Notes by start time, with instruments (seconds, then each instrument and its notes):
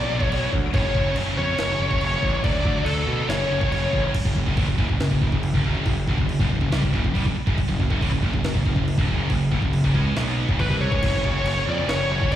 Already playing: lead electric guitar D5
0.06 distorted electric guitar B2 F#3
0.10 picked electric bass B1, distorted electric guitar B2 F#3
0.21 distorted electric guitar B2 F#3, lead electric guitar C#5, kick
0.30 picked electric bass B1, distorted electric guitar B2 F#3, crash
0.36 distorted electric guitar B2 F#3
0.44 distorted electric guitar B2 F#3
0.53 picked electric bass D2, kick
0.73 picked electric bass F#1, distorted electric guitar F#2 C#3, lead electric guitar C#5, kick, crash
0.81 distorted electric guitar F#2 C#3
0.89 distorted electric guitar F#2 C#3
0.95 picked electric bass F#1, distorted electric guitar F#2 C#3, kick
1.05 distorted electric guitar F#2 C#3
1.11 distorted electric guitar F#2 C#3
1.16 picked electric bass F#1, crash
1.20 distorted electric guitar F#2 C#3
1.27 distorted electric guitar F#2 C#3
1.35 picked electric bass F2, distorted electric guitar F#2 C#3, lead electric guitar C#5
1.43 distorted electric guitar F#2 C#3
1.52 distorted electric guitar F#2 C#3
1.58 picked electric bass F#1, distorted electric guitar F#2 C#3, snare, crash
1.65 distorted electric guitar F#2 C#3
1.73 distorted electric guitar F#2 C#3
1.80 picked electric bass F#1, distorted electric guitar F#2 C#3
1.89 distorted electric guitar F#2 C#3, kick
1.97 distorted electric guitar F#2 C#3
2.01 picked electric bass F#1, distorted electric guitar C#3, crash
2.06 distorted electric guitar F#2
2.13 distorted electric guitar F#2 C#3
2.20 picked electric bass A1, distorted electric guitar F#2 C#3, kick
2.29 distorted electric guitar F#2 C#3
2.36 distorted electric guitar F#2 C#3
2.44 picked electric bass D2, distorted electric guitar D3 F#3, lead electric guitar D5, kick, crash
2.51 distorted electric guitar D3 F#3
2.60 distorted electric guitar D3 F#3
2.65 picked electric bass D2, distorted electric guitar D3 F#3, kick
2.75 distorted electric guitar D3 F#3
2.83 picked electric bass D2, distorted electric guitar D3 F#3, lead electric guitar A4, crash
2.89 distorted electric guitar D3 F#3
2.98 distorted electric guitar D3 F#3
3.05 picked electric bass B2, distorted electric guitar D3 F#3
3.13 distorted electric guitar D3 F#3
3.21 distorted electric guitar D3 F#3
3.29 picked electric bass F#1, distorted electric guitar F#2 C#3, lead electric guitar C#5, snare, crash
3.37 distorted electric guitar F#2 C#3
3.45 distorted electric guitar F#2 C#3
3.51 picked electric bass F#1, distorted electric guitar F#2 C#3
3.60 distorted electric guitar F#2 C#3, kick
3.67 distorted electric guitar F#2 C#3
3.72 picked electric bass F#1, distorted electric guitar F#2, lead electric guitar C#5, crash
3.76 distorted electric guitar C#3
3.83 distorted electric guitar F#2 C#3
3.90 picked electric bass A1, distorted electric guitar F#2 C#3, kick
3.98 distorted electric guitar F#2 C#3
4.07 distorted electric guitar F#2 C#3
4.14 kick, crash
4.25 picked electric bass F#1, distorted electric guitar F#2 C#3, kick
4.36 picked electric bass F#1, distorted electric guitar F#2 C#3, kick
4.46 picked electric bass F#1, distorted electric guitar F#2 C#3, kick
4.57 picked electric bass A1, distorted electric guitar A2 E3, kick, crash
4.67 picked electric bass F#1, distorted electric guitar F#2 C#3, kick
4.78 picked electric bass F#1, distorted electric guitar F#2 C#3, kick
4.89 picked electric bass F#1, distorted electric guitar F#2 C#3, kick
5.00 picked electric bass F#1, distorted electric guitar F#2 C#3, snare, crash
5.11 picked electric bass F#1, distorted electric guitar F#2 C#3, kick
5.22 picked electric bass F#1, distorted electric guitar F#2 C#3, kick
5.32 picked electric bass F#1, distorted electric guitar F#2 C#3, kick
5.43 crash
5.54 picked electric bass G1, distorted electric guitar G2 D3, kick
5.65 picked electric bass F#1, distorted electric guitar F#2 C#3 F#3, kick
5.86 picked electric bass F#1, distorted electric guitar F#2 C#3, kick, crash
6.08 picked electric bass G1, distorted electric guitar G2 D3, kick
6.18 picked electric bass F#1, distorted electric guitar F#2 C#3, kick
6.29 crash
6.39 picked electric bass F#1, distorted electric guitar F#2 C#3, kick
6.50 picked electric bass F#1, distorted electric guitar F#2 C#3, kick
6.61 picked electric bass F#1, distorted electric guitar F#2 C#3, kick
6.71 picked electric bass C2, distorted electric guitar C3 G3, snare, crash
6.83 picked electric bass F#1, distorted electric guitar F#2 C#3, kick
6.93 picked electric bass F#1, distorted electric guitar F#2 C#3, kick
7.04 picked electric bass F#1, distorted electric guitar F#2 C#3, kick
7.14 picked electric bass C2, distorted electric guitar C3 G3, kick, crash
7.26 picked electric bass F#1, distorted electric guitar F#2 C#3, kick
7.36 muted distorted electric guitar stroke, muted picked electric bass stroke
7.47 picked electric bass F#1, distorted electric guitar F#2 C#3, kick
7.58 kick, crash
7.69 picked electric bass F#1, distorted electric guitar F#2 C#3, kick
7.80 picked electric bass F#1, distorted electric guitar F#2 C#3, kick
7.90 picked electric bass F#1, distorted electric guitar F#2 C#3, kick
8.01 picked electric bass A1, distorted electric guitar A2 E3, kick, crash
8.12 picked electric bass F#1, distorted electric guitar F#2 C#3, kick
8.23 picked electric bass F#1, distorted electric guitar F#2 C#3, kick
8.33 picked electric bass F#1, distorted electric guitar F#2 C#3, kick
8.43 picked electric bass F#1, distorted electric guitar F#2 C#3, snare, crash
8.54 picked electric bass F#1, distorted electric guitar F#2 C#3, kick
8.65 picked electric bass F#1, distorted electric guitar F#2 C#3, kick
8.76 picked electric bass F#1, distorted electric guitar F#2 C#3, kick
8.88 crash
8.98 picked electric bass G1, distorted electric guitar G2 D3, kick
9.08 picked electric bass F#1, distorted electric guitar F#2 C#3 F#3, kick
9.30 picked electric bass F#1, distorted electric guitar F#2 C#3, kick, crash
9.52 picked electric bass G1, distorted electric guitar G2 D3, kick
9.62 picked electric bass F#1, distorted electric guitar F#2 C#3, kick
9.73 crash
9.84 picked electric bass F#1, distorted electric guitar F#2 C#3, kick
9.94 picked electric bass C#2, distorted electric guitar C#3 G#3 C#4, kick
10.16 picked electric bass B1, distorted electric guitar B2 F#3 B3, snare, crash
10.49 picked electric bass F#1, distorted electric guitar F#2 C#3, kick
10.59 picked electric bass A1, distorted electric guitar A2 E3, lead electric guitar B4, kick, crash
10.70 picked electric bass C2, distorted electric guitar C3 G3 C4, kick
10.81 lead electric guitar C#5
10.92 picked electric bass C#2, distorted electric guitar C#3 G#3, kick
11.02 picked electric bass F#1, distorted electric guitar F#2 C#3, kick, crash
11.09 distorted electric guitar F#2 C#3
11.18 distorted electric guitar F#2 C#3
11.24 picked electric bass F#1, distorted electric guitar F#2 C#3, kick
11.33 distorted electric guitar F#2 C#3
11.41 picked electric bass F#1, distorted electric guitar F#2 C#3
11.46 distorted electric guitar F#2 C#3, crash
11.57 distorted electric guitar F#2 C#3
11.65 picked electric bass F2, distorted electric guitar F#2 C#3
11.69 distorted electric guitar F#2 C#3, lead electric guitar D5
11.80 distorted electric guitar F#2 C#3
11.88 picked electric bass F#1, distorted electric guitar F#2 C#3, lead electric guitar C#5, snare, crash
11.97 distorted electric guitar F#2 C#3
12.04 distorted electric guitar F#2 C#3
12.10 picked electric bass F#1, distorted electric guitar F#2 C#3, lead electric guitar C#5
12.19 distorted electric guitar F#2 C#3, kick
12.27 picked electric bass F#1, distorted electric guitar F#2 C#3
12.32 lead electric guitar D5, crash